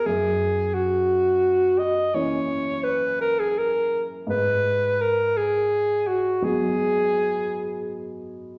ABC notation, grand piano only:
X:1
M:12/8
L:1/8
Q:3/8=56
K:G#m
V:1 name="Grand piano" clef=bass
F,,6 [E,A,C]6 | G,,6 [F,G,B,]6 |]